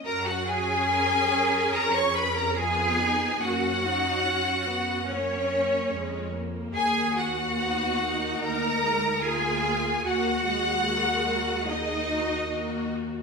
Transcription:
<<
  \new Staff \with { instrumentName = "Violin section" } { \time 4/4 \key fis \major \tempo 4 = 72 ais''16 fis''16 gis''4. ais''16 cis'''16 b''16 ais''16 gis''4 | fis''2 cis''4. r8 | gis''8 fis''4. ais''4 gis''4 | fis''2 dis''4. r8 | }
  \new Staff \with { instrumentName = "Violin section" } { \time 4/4 \key fis \major ais''16 fis''16 gis''4. ais''16 cis'''16 b''16 ais''16 gis''4 | fis''2 cis''4. r8 | gis''8 fis''4. ais''4 gis''4 | fis''2 dis''4. r8 | }
  \new Staff \with { instrumentName = "Cello section" } { \time 4/4 \key fis \major ais'16 fis'16 gis'4. ais'16 cis''16 b'16 ais'16 gis'4 | fis'2 cis'4. r8 | gis'8 fis'4. ais'4 gis'4 | fis'2 dis'4. r8 | }
  \new Staff \with { instrumentName = "Viola section" } { \time 4/4 \key fis \major << { fis'4 ais'8 ais'8 gis'4 eis'8 dis'8 | cis'1~ | cis'4 dis'2 eis'4 | fis'4 ais'4 gis'8 fis'8 fis'4 | } \\ { cis'2. b4 | ais8 dis'8 cis'8 b8 ais8 ais8 gis8 ais8~ | ais4 b8 ais8 ais8 gis8 ais4 | ais8 gis4. ais4 ais4 | } >> }
  \new Staff \with { instrumentName = "Double bass section" } { \clef bass \time 4/4 \key fis \major fis,2 eis,2 | fis,2. eis,4 | dis,2 d,2 | dis,1 | }
>>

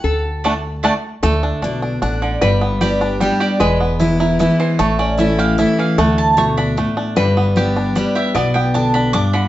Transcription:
<<
  \new Staff \with { instrumentName = "Mandolin" } { \time 3/4 \key g \lydian \tempo 4 = 152 r4 <a fis' d'' a''>8 r8 <a fis' d'' a''>8 r8 | r4 d''4 fis''8 d''8 | d''8 r8 d''4 g''8 d''8 | d''8 r4 bes'8 b'8 c''8 |
cis''8 d''8 e''8 f''8 e''8 f''8 | fis''8 a''8 cis'''8 b''4 r8 | r2 d''8 e''8 | fis''8 g''8 a''8 b''8 d'''8 b''8 | }
  \new Staff \with { instrumentName = "Resonator guitar played with a steel bar" } { \time 3/4 \key g \lydian a'2~ a'8 r8 | a'2. | b'2. | b'2. |
a'2~ a'8 r8 | a'2. | b'2. | d''2. | }
  \new Staff \with { instrumentName = "Five-string banjo" } { \time 3/4 \key g \lydian r4 <a d'>8 r8 <a d'>8 r8 | a8 d'8 d'8 d'8 d'8 d8 | g8 b8 g'8 d'8 g8 g'8 | gis8 b8 e'8 e'8 e'8 e8 |
a8 cis'8 e'8 g'8 e'8 e8 | a4 a8 d'8 a8 d'8 | g8 b8 g'8 d'8 g8 g'8 | b8 b8 d'8 d'8 d'8 d8 | }
  \new Staff \with { instrumentName = "Steel-string acoustic guitar" } { \clef bass \time 3/4 \key g \lydian << { fis''8 r2 r8 | r2. | r4 <g b d' g'>4 <g b d' g'>4 | r4 <e gis b e'>4 <e gis b e'>4 |
r4 <e a cis' e'>4 <e a cis' e'>4 | r2. | r4 <g b d' g'>4 <g b d' g'>4 | r2. | } \\ { r2. | d4 b,4 a,4 | g,2 r4 | e,2 r4 |
a,2 r4 | d4 b,4 a,4 | g,2 r4 | b,4 d4 g,4 | } >> }
  \new Staff \with { instrumentName = "Upright bass" } { \clef bass \time 3/4 \key g \lydian d,2. | d,4 b,,4 a,,4 | g,,2. | e,,2. |
a,,2. | d,2. | g,,2. | b,,2. | }
>>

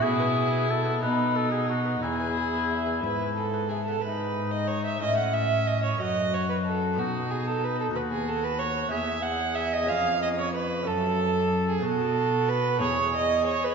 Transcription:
<<
  \new Staff \with { instrumentName = "Violin" } { \time 6/8 \key e \major \tempo 4. = 61 e'4. dis'4. | gis'4. b'8 a'8 gis'16 a'16 | b'8. dis''16 cis''16 e''16 dis''16 fis''16 e''8 dis''16 cis''16 | dis''8 cis''16 b'16 a'8 fis'8 gis'16 a'16 b'16 a'16 |
b'16 gis'16 a'16 b'16 cis''8 e''8 fis''8 e''16 dis''16 | eis''8 dis''16 cis''16 b'8 a'4~ a'16 gis'16 | a'4 b'8 cis''8 dis''8 cis''16 b'16 | }
  \new Staff \with { instrumentName = "Oboe" } { \time 6/8 \key e \major gis'4 a'8 b'8 a'16 gis'16 fis'8 | e'2~ e'8 r8 | dis'4. cis'4. | fis'4. dis'4. |
fis'4. gis'4.~ | gis'4 r8 a'4. | fis'4. gis'4. | }
  \new Staff \with { instrumentName = "Lute" } { \time 6/8 \key e \major r16 b'16 gis'16 b16 e'16 b16 r16 b'16 fis'16 b16 dis'16 b16 | r16 b'16 gis'16 b16 e'16 b16 gis'16 b'16 gis'16 b16 e'16 b16 | <b e'>4. <a cis' e'>4. | <a cis' fis'>4. <b dis' fis'>4. |
<b fis' a'>4. <b e' gis'>4. | <b cis' gis'>4. <a cis' fis'>4. | <b dis' fis'>4. <b e' gis'>4. | }
  \new Staff \with { instrumentName = "Lute" } { \clef bass \time 6/8 \key e \major b,4. b,4. | e,4. gis,4. | gis,4. a,4. | fis,4. b,4. |
dis,4. e,4. | eis,4. fis,4. | b,4. e,4. | }
  \new Staff \with { instrumentName = "Cello" } { \clef bass \time 6/8 \key e \major b,4. b,4. | e,4. gis,4. | gis,4. a,4. | fis,4. b,4. |
dis,4. e,4. | eis,4. fis,4. | b,4. e,4. | }
>>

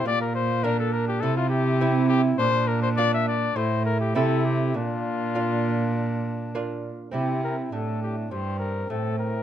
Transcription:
<<
  \new Staff \with { instrumentName = "Cornet" } { \time 4/4 \key c \mixolydian \tempo 4 = 102 d''16 bes'16 c''8 bes'16 a'16 bes'16 g'16 a'16 f'16 g'4 g'8 | c''8 bes'16 c''16 d''16 e''16 d''8 c''8 bes'16 g'16 a'8 g'8 | f'2. r4 | g'8 bes'8 a'8 g'8 c''8 bes'8 a'8 bes'8 | }
  \new Staff \with { instrumentName = "Bassoon" } { \time 4/4 \key c \mixolydian f'4 d'4 e'4 e'4 | d'2 e'4 e'4 | d'2.~ d'8 r8 | e'4 d'4 c'4 c'4 | }
  \new Staff \with { instrumentName = "Lute" } { \time 4/4 \key c \mixolydian r4 <bes d'>4 r4 <c' e'>4 | r4 <bes d' f'>4 r4 <c' e' a'>4 | r4 <bes d' f'>4 r4 <bes d' f'>4 | <c' e'>1 | }
  \new Staff \with { instrumentName = "Lute" } { \clef bass \time 4/4 \key c \mixolydian bes,2 c2 | bes,2 a,4 c4 | bes,2.~ bes,8 r8 | c4 a,4 g,4 a,4 | }
  \new Staff \with { instrumentName = "Cello" } { \clef bass \time 4/4 \key c \mixolydian bes,2 c2 | bes,2 a,4 c4 | bes,2.~ bes,8 r8 | c4 a,4 g,4 a,4 | }
>>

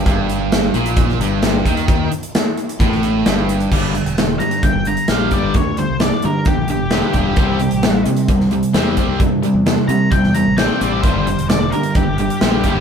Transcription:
<<
  \new Staff \with { instrumentName = "Lead electric guitar" } { \time 4/4 \key g \dorian \tempo 4 = 131 r1 | r1 | r4. bes''8 g''8 bes''8 f''8 d''8 | cis''8 c''8 d''8 bes'8 g'8 g'4.~ |
g'4. r2 r8 | r4. bes''8 g''8 bes''8 g''8 d''8 | c''8 c''8 d''8 bes'8 g'8 g'4. | }
  \new Staff \with { instrumentName = "Tonewheel organ" } { \time 4/4 \key g \dorian << { r1 | r1 | r1 | r1 |
r1 | r1 | <c' d' e' f' g' a' b' c'' d'' e'' f''>8 r2. r8 | } \\ { r1 | r1 | r1 | r1 |
r1 | r1 | <g d' bes'>1 | } >> }
  \new Staff \with { instrumentName = "Overdriven electric guitar" } { \clef bass \time 4/4 \key g \dorian g,4. bes,4 g,4 ees8~ | ees8 r4. a,4 g,4 | <g, d g>8 <g, d>8 <g, d>8 <g, d>8 <g, d>8 <g, d>8 <g, d g>8 <g, d g>8 | <g, d>8 <g, d>8 <g, d>8 <g, d>8 <g, d>8 <g, d>8 <g, d g>8 <g, d g>8 |
<c g c'>8 <c g>8 <c g>8 <c g>8 <c g>8 <c g>8 <c g c'>8 <c g c'>8 | <c g>8 <c g>8 <c g>8 <c g>8 <c g>8 <c g>8 <c g c'>8 <c g c'>8 | <g, d g>8 <g, d>8 <g, d>8 <g, d>8 <g, d>8 <g, d>8 <g, d g>8 <g, d g>8 | }
  \new Staff \with { instrumentName = "Overdriven electric guitar" } { \clef bass \time 4/4 \key g \dorian g,4. bes,4 g,4 ees8~ | ees8 r4. a,4 g,4 | <g, d g>8 <g, d>8 <g, d>8 <g, d>8 <g, d>8 <g, d>8 <g, d g>8 <g, d g>8 | <g, d>8 <g, d>8 <g, d>8 <g, d>8 <g, d>8 <g, d>8 <g, d g>8 <g, d g>8 |
<c g c'>8 <c g>8 <c g>8 <c g>8 <c g>8 <c g>8 <c g c'>8 <c g c'>8 | <c g>8 <c g>8 <c g>8 <c g>8 <c g>8 <c g>8 <c g c'>8 <c g c'>8 | <g, d g>8 <g, d>8 <g, d>8 <g, d>8 <g, d>8 <g, d>8 <g, d g>8 <g, d g>8 | }
  \new Staff \with { instrumentName = "Fingered electric bass" } { \clef bass \time 4/4 \key g \dorian g,,4. bes,,4 g,,4 ees,8~ | ees,8 r4. a,,4 g,,4 | g,,8. e,,8. g,8 r16 g,,8 r16 bes,,8 r16 g,,16 | d,8. c,8 r16 g,8 r16 bes,,8 e,,8 r16 e,,8 |
c,8. a,,8. c8 r16 c,8 r16 e,8 r16 c,16 | g,8. e,8 r16 c8 r16 e,8 a,,8 r16 a,,8 | g,,8. e,,8. g,8 r16 g,,8 r16 bes,,8 r16 g,,16 | }
  \new DrumStaff \with { instrumentName = "Drums" } \drummode { \time 4/4 <hh bd>8 hh8 <hh sn>8 hh16 hh16 <hh bd>16 sn16 hh8 <hh sn>8 <hh bd>16 hh16 | <hh bd>8 hh16 hh16 <hh sn>8 hh16 hh16 <hh bd>16 sn16 hh8 <hh sn>8 hh16 hh16 | <cymc bd>8 hh16 hh16 <hh sn>8 hh16 hh16 <hh bd>8 hh16 hh16 <hh sn>8 <hh bd>8 | <hh bd>8 hh8 <hh sn>8 hh8 <hh bd>8 hh8 <hh sn>8 <hh bd>8 |
<hh bd>8 hh16 hh16 <hh sn>8 hh16 hh16 <hh bd>16 sn16 hh16 hh16 <hh sn>8 <hh bd>8 | <hh bd>8 hh8 <hh sn>8 hh8 <hh bd>16 sn16 hh8 <hh sn>8 hh8 | <hh bd>8 hh16 hh16 <hh sn>8 hh16 hh16 <hh bd>8 hh16 hh16 <hh sn>8 <hh bd>8 | }
>>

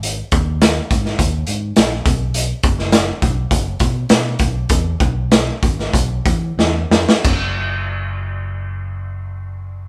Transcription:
<<
  \new Staff \with { instrumentName = "Fingered electric bass" } { \clef bass \time 4/4 \key e \lydian \tempo 4 = 99 gis,,8 dis,4 gis,8 dis,8 gis,8 ais,,8 b,,8~ | b,,8 fis,,4 b,,8 fis,,8 b,8 b,8 b,,8 | e,8 b,,4 gis,,8 b,,8 e8 e,8 eis,16 r16 | fis,,1 | }
  \new DrumStaff \with { instrumentName = "Drums" } \drummode { \time 4/4 hh8 <hh bd>8 <hh sn>8 <hh bd>16 sn16 <hh bd>8 hh8 <hh sn>8 <hh bd>8 | hh8 <hh bd>16 sn16 <hh sn>8 <hh bd>8 <hh bd>8 <hh bd>8 <hh sn>8 <hh bd>8 | <hh bd>8 <hh bd>8 <hh sn>8 <hh bd>16 sn16 <hh bd>8 <hh bd>8 sn8 sn16 sn16 | <cymc bd>4 r4 r4 r4 | }
>>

